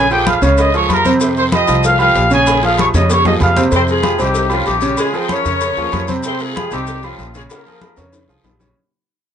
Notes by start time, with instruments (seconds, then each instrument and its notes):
Already playing: upright bass A#1
0.10 grand piano F3 F4 G#4, trumpet section G4 G5, high conga, low agogo, maracas
0.26 trumpet section F5, cowbell, high conga, low agogo, short guiro, maracas
0.42 upright bass C#2, grand piano C#3 C#4 C#5, trumpet section F5, cowbell, short guiro, maracas
0.58 trumpet section D#5 D#6, cowbell, high conga, low agogo, long guiro, maracas
0.74 grand piano F3 F4 G#4, trumpet section C#5 C#6, high conga, maracas
0.89 upright bass F2, trumpet section A#4, cowbell, high conga, low timbale, low agogo, short guiro, maracas
0.93 trumpet section A#5
1.05 grand piano C3 C4 C5, high conga, low agogo, short guiro, maracas
1.20 grand piano C3 C4 C5, cowbell, high conga, low agogo, long guiro, maracas
1.36 trumpet section C5 C6, high conga, maracas
1.52 grand piano F3 F4 G4, trumpet section D#5 D#6, cowbell, high conga, low agogo, short guiro, maracas
1.68 upright bass C2, grand piano F3 F4 G4, cowbell, high conga, low agogo, short guiro, maracas
1.84 trumpet section F5, cowbell, high conga, long guiro, maracas
1.99 grand piano F3 F4 G4, trumpet section F5, high conga, low agogo, maracas
2.15 upright bass A#1, cowbell, high conga, low timbale, low agogo, short guiro, maracas
2.30 grand piano C#3 C#4 C#5, trumpet section G#4 G#5, high conga, short guiro, maracas
2.46 cowbell, high conga, high timbale, low agogo, long guiro, maracas
2.63 grand piano F3 F4 G#4, trumpet section F5, high conga, low agogo, maracas
2.78 trumpet section C#5 C#6, cowbell, high conga, low timbale, low agogo, short guiro, maracas
2.94 upright bass F2, grand piano C#3 C#4 C#5, trumpet section D#5 D#6, cowbell, low timbale, short guiro, maracas
3.10 trumpet section C#5 C#6, cowbell, high conga, low timbale, low agogo, long guiro, maracas
3.25 grand piano F3 F4 G#4, trumpet section D#5 D#6, high conga, low timbale, maracas
3.40 upright bass F2, trumpet section F5, cowbell, low conga, low timbale, low agogo, short guiro, maracas
3.56 grand piano C3 C4 C5, low conga, low timbale, low agogo, short guiro, maracas
3.71 upright bass F2, grand piano C3 C4 C5, cowbell, high conga, low agogo, long guiro, maracas
3.75 horn section C4 G#4 C5
3.87 horn section G#3 F4 G#4, high conga, maracas
4.02 grand piano F3 F4 G4, cowbell, high conga, low agogo, short guiro, maracas
4.19 upright bass C2, grand piano C3 C4 C5, horn section G3 D#4 G4, cowbell, high conga, low agogo, short guiro, maracas
4.34 cowbell, high conga, long guiro, maracas
4.50 grand piano F3 F4 G4, horn section F3 C#4 F4, high conga, low agogo, maracas
4.65 upright bass A#1, horn section G3 C4 G4, cowbell, high conga, low agogo, short guiro, maracas
4.81 grand piano C#3 C#4 C#5, high conga, short guiro, maracas
4.97 horn section G#3 F4 G#4, cowbell, high conga, low agogo, long guiro, maracas
5.13 grand piano F3 F4 G#4, horn section C4 G#4 C5, high conga, low agogo, maracas
5.29 horn section C#4 A#4 C#5, cowbell, high conga, low agogo, short guiro, maracas
5.45 upright bass F2, grand piano C#3 C#4 C#5, cowbell, short guiro, maracas
5.60 cowbell, high conga, low agogo, long guiro, maracas
5.77 upright bass D#2, grand piano F3 F4 G#4, high conga, maracas
5.92 upright bass F2, cowbell, high conga, low timbale, low agogo, short guiro, maracas
6.08 grand piano C3 C4 C5, high conga, low agogo, short guiro, maracas
6.23 grand piano C3 C4 C5, horn section C4 G#4 C5, cowbell, low agogo, long guiro, maracas
6.39 horn section G#3 F4 G#4, high conga, maracas
6.55 grand piano F3 F4 G4, cowbell, high conga, low agogo, short guiro, maracas
6.71 upright bass C2, grand piano C3 C4 C5, horn section G3 D#4 G4, cowbell, high conga, low agogo, short guiro, maracas
6.87 cowbell, high conga, long guiro, maracas
7.03 grand piano F3 F4 G4, horn section F3 C#4 F4, high conga, low agogo, maracas
7.18 upright bass A#1, cowbell, high conga, low timbale, low agogo, short guiro, maracas
7.34 grand piano C#3 C#4 C#5, horn section G#3 F4 G#4, high conga, short guiro, maracas
7.49 horn section A#3 F4 A#4, cowbell, high bongo, high conga, low agogo, long guiro, maracas
7.66 grand piano F3 F4 G#4, high conga, low agogo, maracas
7.81 cowbell, high bongo, high conga, low agogo, short guiro, maracas
7.97 upright bass F2, grand piano C#3 C#4 C#5, cowbell, high bongo, high timbale, short guiro, maracas
8.12 cowbell, low bongo, high conga, low agogo, long guiro, maracas
8.28 upright bass C2, grand piano F3 F4 G#4, high conga, maracas
8.43 upright bass A#1, cowbell, low bongo, high conga, low timbale, low agogo, short guiro, maracas
8.60 grand piano C#3 C#4 C#5, low bongo, high conga, low timbale, low agogo, short guiro, maracas